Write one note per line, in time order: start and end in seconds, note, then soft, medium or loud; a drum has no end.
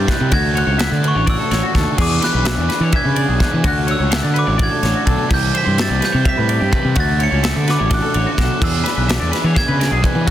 0.00 0.35 A6 medium
0.06 0.29 C3 loud
0.06 0.29 E3 loud
0.06 0.30 G3 loud
0.06 0.31 C4 loud
0.06 0.31 E4 loud
0.06 0.32 B4 medium
0.06 kick medium
0.06 ride medium
0.10 snare soft
0.21 0.31 C3 medium
0.30 0.62 D2 loud
0.30 0.76 D3 loud
0.30 0.55 A3 loud
0.30 0.55 D4 loud
0.30 0.56 F#4 loud
0.30 0.53 F#4 loud
0.30 0.57 G#6 loud
0.30 kick loud
0.30 ride loud
0.54 0.77 A3 medium
0.54 0.79 D4 medium
0.54 0.79 F#4 medium
0.54 0.66 C#5 medium
0.54 ride medium
0.58 1.06 F#6 loud
0.67 0.87 C#2 loud
0.67 0.78 C#5 medium
0.77 1.26 D3 medium
0.77 1.03 A3 medium
0.77 1.03 D4 medium
0.77 1.01 F#4 medium
0.77 0.91 E5 medium
0.77 snare loud
0.77 ride loud
0.91 1.12 D3 medium
0.91 1.03 D5 medium
1.02 1.73 A3 medium
1.02 1.75 D4 medium
1.02 1.75 F#4 medium
1.02 1.15 B4 medium
1.02 ride medium
1.08 1.30 C#6 medium
1.15 1.36 A1 medium
1.15 1.26 C#5 medium
1.27 1.38 D5 medium
1.27 2.02 E6 medium
1.27 kick loud
1.27 ride loud
1.39 1.51 A4 medium
1.51 1.61 A1 loud
1.51 1.63 C#5 medium
1.51 snare soft
1.51 ride medium
1.63 1.75 F#4 medium
1.73 1.85 D#2 medium
1.73 1.96 D3 medium
1.73 1.97 A3 loud
1.73 1.98 D4 loud
1.73 1.98 F#4 loud
1.73 1.98 A4 medium
1.73 kick medium
1.73 snare soft
1.73 ride medium
1.97 2.18 E2 loud
1.97 2.44 E3 loud
1.97 2.22 B3 loud
1.97 2.22 D4 loud
1.97 2.21 G#4 loud
1.97 2.20 G#4 loud
1.97 kick loud
1.97 crash loud
2.02 2.24 D6 medium
2.21 2.45 B3 medium
2.21 2.47 D4 medium
2.21 2.47 G#4 medium
2.21 2.32 B4 medium
2.21 2.97 F#6 loud
2.21 snare soft
2.21 ride medium
2.33 2.54 B1 medium
2.33 2.46 B4 medium
2.45 2.93 E3 medium
2.45 2.69 B3 medium
2.45 2.69 D4 medium
2.45 2.67 G#4 medium
2.45 2.57 E5 medium
2.45 snare loud
2.45 ride loud
2.57 2.68 E2 medium
2.57 2.69 D5 medium
2.68 3.40 B3 medium
2.68 3.41 D4 medium
2.68 3.41 G#4 medium
2.68 2.81 B4 medium
2.68 snare soft
2.68 ride medium
2.80 2.91 E3 loud
2.80 2.92 C#5 medium
2.92 3.05 E5 loud
2.92 3.68 G#6 loud
2.92 kick loud
2.92 ride loud
3.04 3.25 C#3 medium
3.04 3.17 B4 medium
3.16 3.28 D5 medium
3.16 ride medium
3.28 3.39 B1 medium
3.28 3.39 G#4 medium
3.39 3.63 E3 medium
3.39 3.63 B3 loud
3.39 3.63 D4 loud
3.39 3.64 G#4 loud
3.39 3.64 B4 medium
3.39 kick medium
3.39 snare soft
3.39 ride medium
3.54 3.63 E3 medium
3.63 3.95 D2 loud
3.63 4.10 D3 loud
3.63 3.89 A3 loud
3.63 3.88 D4 loud
3.63 3.88 F#4 loud
3.63 3.87 F#4 loud
3.63 kick loud
3.63 ride loud
3.68 3.91 F#6 medium
3.87 4.11 A3 medium
3.87 4.11 D4 medium
3.87 4.12 F#4 medium
3.87 3.98 C#5 medium
3.87 ride medium
3.91 4.39 E6 medium
3.99 4.20 C#2 loud
3.99 4.11 C#5 medium
4.11 4.59 D3 medium
4.11 4.36 A3 medium
4.11 4.35 D4 medium
4.11 4.34 F#4 medium
4.11 4.23 E5 medium
4.11 snare loud
4.11 ride loud
4.23 4.44 D3 medium
4.23 4.33 D5 medium
4.34 5.05 A3 medium
4.34 5.06 D4 medium
4.34 5.07 F#4 medium
4.34 4.47 B4 medium
4.34 ride medium
4.39 4.62 D6 medium
4.47 4.68 A1 medium
4.47 4.58 C#5 medium
4.58 4.71 D5 loud
4.58 kick loud
4.58 ride loud
4.63 5.34 G#6 loud
4.71 4.83 A4 medium
4.83 4.93 A1 loud
4.83 4.95 C#5 medium
4.83 snare soft
4.83 ride medium
4.95 5.05 F#4 medium
5.06 5.17 B1 medium
5.06 5.28 D3 medium
5.06 5.29 A3 loud
5.06 5.29 D4 loud
5.06 5.30 F#4 loud
5.06 5.29 A4 medium
5.06 kick medium
5.06 ride medium
5.29 5.51 C2 loud
5.29 5.78 C3 loud
5.29 5.76 E3 loud
5.29 5.54 G3 loud
5.29 5.53 C4 medium
5.29 5.54 G4 loud
5.29 5.52 G4 medium
5.29 kick loud
5.29 crash loud
5.34 5.57 G6 loud
5.53 5.77 G3 medium
5.53 5.77 C4 medium
5.53 5.78 G4 medium
5.53 5.64 C5 medium
5.53 ride medium
5.58 5.78 B6 loud
5.66 5.86 G2 medium
5.66 5.77 C5 medium
5.77 6.25 E3 medium
5.77 6.03 G3 medium
5.77 6.02 C4 medium
5.77 6.00 G4 medium
5.77 5.89 E5 loud
5.77 snare loud
5.77 ride loud
5.82 6.04 A6 loud
5.89 6.00 C2 medium
5.89 6.00 D5 medium
6.01 6.73 G3 medium
6.01 6.73 C4 medium
6.01 6.74 G4 medium
6.01 6.12 B4 medium
6.01 snare soft
6.01 ride medium
6.05 6.15 G6 loud
6.12 6.24 C3 loud
6.12 6.25 C5 medium
6.25 6.37 E5 medium
6.25 7.00 B6 loud
6.25 kick loud
6.25 ride loud
6.37 6.58 A2 medium
6.37 6.49 B4 medium
6.49 6.61 D5 medium
6.49 ride medium
6.60 6.71 G2 medium
6.60 6.71 G4 medium
6.71 6.95 C3 medium
6.71 6.95 E3 medium
6.71 6.95 G3 loud
6.71 6.96 C4 loud
6.71 6.96 G4 loud
6.71 6.96 B4 medium
6.71 kick medium
6.71 ride medium
6.85 6.95 C3 medium
6.95 7.27 D2 loud
6.95 7.41 D3 loud
6.95 7.21 A3 loud
6.95 7.20 D4 loud
6.95 7.20 F#4 loud
6.95 7.18 F#4 loud
6.95 kick loud
6.95 ride loud
7.00 7.10 A6 loud
7.19 7.42 A3 medium
7.19 7.43 D4 medium
7.19 7.44 F#4 medium
7.19 7.30 C#5 medium
7.19 ride medium
7.23 7.70 C#7 loud
7.31 7.52 C#2 loud
7.31 7.43 C#5 medium
7.42 7.90 D3 medium
7.42 7.68 A3 medium
7.42 7.68 D4 medium
7.42 7.66 F#4 medium
7.42 7.56 E5 loud
7.42 snare loud
7.42 ride loud
7.56 7.76 D3 medium
7.56 7.67 D5 medium
7.67 8.37 A3 medium
7.67 8.38 D4 medium
7.67 8.38 F#4 medium
7.67 7.79 B4 medium
7.67 7.93 D6 loud
7.67 snare soft
7.67 ride medium
7.79 8.00 A1 medium
7.79 7.90 C#5 medium
7.90 8.02 D5 loud
7.90 kick loud
7.90 snare soft
7.90 ride loud
7.94 8.66 F#6 loud
8.02 8.14 A4 medium
8.14 8.25 A1 loud
8.14 8.26 C#5 medium
8.14 ride medium
8.26 8.38 F#4 medium
8.37 8.48 B1 medium
8.37 8.59 D3 loud
8.37 8.60 A3 loud
8.37 8.61 D4 loud
8.37 8.61 F#4 loud
8.37 8.61 A4 medium
8.37 kick medium
8.37 snare soft
8.37 ride medium
8.59 8.82 E2 loud
8.59 9.07 E3 medium
8.59 8.85 B3 loud
8.59 8.85 D4 loud
8.59 8.85 G#4 loud
8.59 8.83 G#4 loud
8.59 kick loud
8.59 crash loud
8.63 9.60 E6 loud
8.84 9.07 B3 medium
8.84 9.09 D4 medium
8.84 9.09 G#4 medium
8.84 8.96 B4 medium
8.84 snare soft
8.84 ride medium
8.97 9.17 B1 loud
8.97 9.08 B4 medium
9.08 9.56 E3 medium
9.08 9.33 B3 medium
9.08 9.33 D4 medium
9.08 9.30 G#4 medium
9.08 9.19 E5 medium
9.08 snare loud
9.08 ride loud
9.20 9.31 E2 medium
9.20 9.31 D5 medium
9.31 10.01 B3 medium
9.31 10.03 D4 medium
9.31 10.02 G#4 medium
9.31 9.44 B4 medium
9.31 snare soft
9.31 ride medium
9.44 9.54 E3 loud
9.44 9.55 C#5 medium
9.55 9.67 E5 loud
9.55 10.24 G#6 loud
9.55 kick loud
9.55 snare soft
9.55 ride loud
9.68 9.89 C#3 loud
9.68 9.80 B4 medium
9.80 9.92 D5 medium
9.80 snare soft
9.80 ride medium
9.91 10.02 B1 medium
9.91 10.03 G#4 medium
10.01 10.25 E3 loud
10.01 10.25 B3 medium
10.01 10.27 D4 loud
10.01 10.26 G#4 loud
10.01 10.27 B4 medium
10.01 kick medium
10.01 ride medium
10.15 10.26 E3 medium
10.25 10.31 D3 medium
10.25 10.31 F#3 loud
10.25 10.31 A3 loud
10.25 10.31 D4 loud
10.25 10.31 F#4 loud
10.25 kick loud